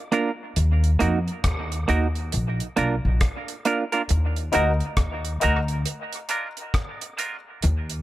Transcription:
0.12 clean electric guitar A#3 D4 F4 A#4, closed hi-hat
0.56 upright bass D#2, closed hi-hat
0.84 closed hi-hat
0.99 upright bass F2, clean electric guitar A#3 D#4 F#4 A#4, closed hi-hat
1.28 closed hi-hat
1.44 upright bass D#2, kick, cross-stick, closed hi-hat
1.72 closed hi-hat
1.88 upright bass D#2, clean electric guitar A#3 D#4 F#4 A#4, closed hi-hat
2.15 closed hi-hat
2.32 upright bass A#1, closed hi-hat
2.60 closed hi-hat
2.76 upright bass B1, clean electric guitar A#3 D4 F4 A#4, closed hi-hat
3.05 upright bass A#1
3.21 kick, cross-stick, closed hi-hat
3.48 closed hi-hat
3.65 clean electric guitar A#3 D4 F4 A#4, closed hi-hat
3.92 clean electric guitar A#3 D4 F4 A#4, closed hi-hat
4.09 upright bass D#2, closed hi-hat
4.36 closed hi-hat
4.52 upright bass D2, clean electric guitar A#3 D#4 F#4 A#4, grand piano D#4 F#4 A#4, closed hi-hat
4.80 closed hi-hat
4.97 upright bass D#2, kick, cross-stick, closed hi-hat
5.25 closed hi-hat
5.40 upright bass D2, clean electric guitar A#3 D#4 F#4 A#4, grand piano D#4 F#4 A#4, closed hi-hat
5.68 closed hi-hat
5.86 closed hi-hat
6.13 closed hi-hat
6.29 clean electric guitar A#3 D4 F4 A#4, grand piano D4 F4 A#4, closed hi-hat
6.57 closed hi-hat
6.74 kick, cross-stick, closed hi-hat
7.01 closed hi-hat
7.17 clean electric guitar A#3 D4 F4 A#4, grand piano D4 F4 A#4, closed hi-hat
7.62 upright bass D#2, closed hi-hat
7.90 closed hi-hat

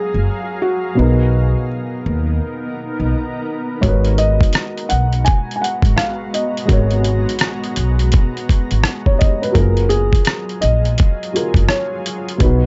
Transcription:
Already playing: upright piano F#3 G#4 C#5 F5, ambient pad F#3 G#4 F5 A#5, felt piano G#4
0.14 upright bass F#1
0.62 felt piano F#4
0.95 upright bass B1, upright piano B2 B3, ambient pad B3 D#4 A#4
0.99 upright piano D#4 A#4
2.06 upright bass D#2
3.00 upright bass B1
3.81 upright bass G#1, upright piano G#3 F#4, ambient pad G#3 B3 F#4 A#5, felt piano C#5, kick, closed hi-hat
3.85 upright piano A#4 B4
4.05 closed hi-hat
4.18 felt piano D#5, closed hi-hat
4.41 kick, closed hi-hat
4.53 cross-stick, closed hi-hat
4.78 closed hi-hat
4.89 upright bass B1, felt piano F#5, closed hi-hat
5.13 closed hi-hat
5.25 felt piano G#5, kick, closed hi-hat
5.51 closed hi-hat
5.56 felt piano G#5
5.62 felt piano F#5, closed hi-hat
5.82 upright bass G#1, kick, closed hi-hat
5.96 felt piano F5, cross-stick, closed hi-hat
6.34 felt piano D#5, closed hi-hat
6.57 closed hi-hat
6.66 upright piano G#3 F#4, kick, closed hi-hat
6.70 upright bass G#1, upright piano A#4 C#5
6.91 closed hi-hat
7.04 closed hi-hat
7.29 closed hi-hat
7.39 cross-stick, closed hi-hat
7.64 closed hi-hat
7.76 upright bass B1, closed hi-hat
7.99 closed hi-hat
8.12 kick, closed hi-hat
8.37 closed hi-hat
8.49 kick, closed hi-hat
8.71 upright bass G#1, closed hi-hat
8.84 cross-stick, closed hi-hat
9.06 upright piano C#5, kick
9.19 upright piano D#5, kick, closed hi-hat
9.42 upright piano B4, closed hi-hat
9.52 upright bass F#1, upright piano F#3 F4, ambient pad F4, felt piano A#4, kick, closed hi-hat
9.56 ambient pad F#3 G#4, upright piano G#4 A#4
9.77 closed hi-hat
9.89 felt piano G#4, closed hi-hat
10.13 kick, closed hi-hat
10.25 cross-stick, closed hi-hat
10.49 closed hi-hat
10.61 upright bass A#1, felt piano D#5, closed hi-hat
10.85 closed hi-hat
10.98 kick, closed hi-hat
11.23 closed hi-hat
11.33 upright piano F#3 F4 G#4 A#4, closed hi-hat
11.54 upright bass F#1, kick, closed hi-hat
11.69 felt piano C#5, cross-stick, closed hi-hat
12.06 closed hi-hat
12.29 closed hi-hat
12.38 upright bass B1, upright piano B2 B3, felt piano B4, kick, closed hi-hat
12.42 upright piano D#4 F#4

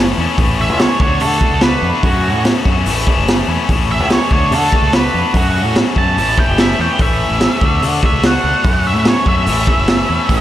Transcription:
Already playing: fingered electric bass F#1, overdriven electric guitar A2 E3 A3 C#4 E4
0.18 fingered electric bass E2, overdriven electric guitar A2 E3 A3 C#4 E4
0.38 fingered electric bass A1, overdriven electric guitar A2 E3 A3 C#4 E4, kick, open hi-hat
0.61 lead electric guitar E5
0.70 fingered electric bass C#2
0.79 lead electric guitar C#5, snare, open hi-hat
1.00 fingered electric bass D2, overdriven electric guitar D3 A3 D4, lead electric guitar C#5, kick
1.04 overdriven electric guitar F#4
1.20 fingered electric bass D3, lead electric guitar A4, open hi-hat
1.41 kick
1.51 fingered electric bass C#2
1.61 overdriven electric guitar D3 A3 D4, lead electric guitar B4, snare, open hi-hat
1.66 overdriven electric guitar F#4
1.82 fingered electric bass F2
2.03 overdriven electric guitar F#2 C#3 F#3 A3 C#4 F#4, fingered electric bass F#2, lead electric guitar F#4, kick, open hi-hat
2.34 fingered electric bass A2
2.45 snare, open hi-hat
2.65 fingered electric bass F#2, overdriven electric guitar F#2 C#3 F#3 A3 C#4 F#4, kick
2.86 fingered electric bass A1, overdriven electric guitar A2 E3 A3 C#4, open hi-hat
2.90 overdriven electric guitar E4
3.07 kick
3.18 fingered electric bass F#1
3.28 snare, open hi-hat
3.48 fingered electric bass E2, overdriven electric guitar A3 C#4 E4
3.52 overdriven electric guitar A2 E3
3.69 fingered electric bass A1, overdriven electric guitar A2 E3 A3 C#4 E4, kick, open hi-hat
3.91 lead electric guitar E5
4.00 fingered electric bass C#2
4.10 lead electric guitar C#5, snare, open hi-hat
4.31 fingered electric bass D2, overdriven electric guitar D3 A3 D4 F#4, lead electric guitar C#5, kick
4.51 fingered electric bass D3, lead electric guitar A4, open hi-hat
4.72 kick
4.82 fingered electric bass C#2
4.93 overdriven electric guitar D3 A3 D4 F#4, lead electric guitar B4, snare, open hi-hat
5.14 fingered electric bass F2
5.34 overdriven electric guitar F#2 C#3 F#3 A3 C#4 F#4, fingered electric bass F#2, lead electric guitar F#4, kick, open hi-hat
5.65 fingered electric bass A2
5.76 snare, open hi-hat
5.95 fingered electric bass F#2, overdriven electric guitar F#2 C#3 F#3 A3 C#4 F#4, lead electric guitar A5, kick
6.16 fingered electric bass A1, overdriven electric guitar A2 E3 A3 C#4 E4, open hi-hat
6.38 lead electric guitar G5, kick
6.48 fingered electric bass F#1
6.58 lead electric guitar E5, snare, open hi-hat
6.79 fingered electric bass E2, overdriven electric guitar A2 E3 A3 C#4 E4, lead electric guitar G5
6.99 fingered electric bass A1, overdriven electric guitar A2 E3 A3 C#4, lead electric guitar E5, kick, open hi-hat
7.03 overdriven electric guitar E4
7.30 fingered electric bass A1
7.40 snare, open hi-hat
7.61 fingered electric bass D2, overdriven electric guitar D3 A3 D4, kick
7.65 overdriven electric guitar F#4
7.82 fingered electric bass D3, open hi-hat
8.03 lead electric guitar E5, kick
8.12 fingered electric bass C#2
8.23 overdriven electric guitar D3 A3 D4, lead electric guitar F#5, snare, open hi-hat
8.27 overdriven electric guitar F#4
8.44 fingered electric bass C#2
8.64 overdriven electric guitar F#2 C#3 F#3 A3 C#4 F#4, fingered electric bass F#2, kick, open hi-hat
8.87 lead electric guitar E5
8.95 fingered electric bass A2
9.05 lead electric guitar C#5, snare, open hi-hat
9.26 fingered electric bass F#2, overdriven electric guitar F#2 C#3 F#3 A3 C#4 F#4, lead electric guitar E5, kick
9.46 fingered electric bass A1, overdriven electric guitar A2 E3 A3 C#4 E4, open hi-hat
9.67 kick
9.78 fingered electric bass F#1
9.88 snare, open hi-hat
10.09 fingered electric bass E2, overdriven electric guitar A2 E3 A3 C#4 E4
10.29 fingered electric bass A1, overdriven electric guitar A2 E3 A3 C#4 E4, kick, open hi-hat

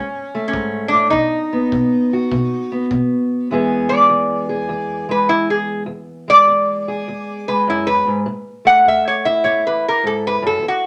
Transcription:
Already playing: steel-string acoustic guitar A2, resonator guitar played with a steel bar C#4
0.35 steel-string acoustic guitar A3
0.48 resonator guitar played with a steel bar C#4
0.53 steel-string acoustic guitar G#2, kick
0.88 resonator guitar played with a steel bar D4
0.93 steel-string acoustic guitar A2
1.10 steel-string acoustic guitar B2, resonator guitar played with a steel bar D#4, kick
1.53 steel-string acoustic guitar B3
1.72 steel-string acoustic guitar B2, kick
2.13 steel-string acoustic guitar F#4
2.32 steel-string acoustic guitar B2, kick
2.72 steel-string acoustic guitar B3
2.91 steel-string acoustic guitar B2, kick
3.51 steel-string acoustic guitar E2 E3 G#3 B3 G#4
3.89 steel-string acoustic guitar G#3, resonator guitar played with a steel bar D5
4.09 steel-string acoustic guitar E2
4.49 steel-string acoustic guitar G#4
4.69 steel-string acoustic guitar E2
5.09 steel-string acoustic guitar G#3, resonator guitar played with a steel bar B4
5.28 steel-string acoustic guitar E2, resonator guitar played with a steel bar E4
5.50 resonator guitar played with a steel bar G#4
5.86 steel-string acoustic guitar E2
6.28 steel-string acoustic guitar G#3, resonator guitar played with a steel bar D5
6.47 steel-string acoustic guitar E2
6.88 steel-string acoustic guitar G#4
7.08 steel-string acoustic guitar E2
7.48 steel-string acoustic guitar G#3, resonator guitar played with a steel bar B4
7.67 steel-string acoustic guitar F#2, resonator guitar played with a steel bar E4
7.87 resonator guitar played with a steel bar B4
8.07 steel-string acoustic guitar G#2
8.26 steel-string acoustic guitar A2
8.65 steel-string acoustic guitar A3, resonator guitar played with a steel bar F#5
8.85 steel-string acoustic guitar A2, resonator guitar played with a steel bar E5
9.08 resonator guitar played with a steel bar C#5
9.25 steel-string acoustic guitar E4, resonator guitar played with a steel bar E5
9.44 steel-string acoustic guitar A2, resonator guitar played with a steel bar C#5
9.67 resonator guitar played with a steel bar B4
9.88 resonator guitar played with a steel bar A#4
10.03 steel-string acoustic guitar G#2, resonator guitar played with a steel bar A4
10.27 resonator guitar played with a steel bar B4
10.42 steel-string acoustic guitar F#2
10.47 resonator guitar played with a steel bar A4
10.62 steel-string acoustic guitar E2
10.68 resonator guitar played with a steel bar F#4

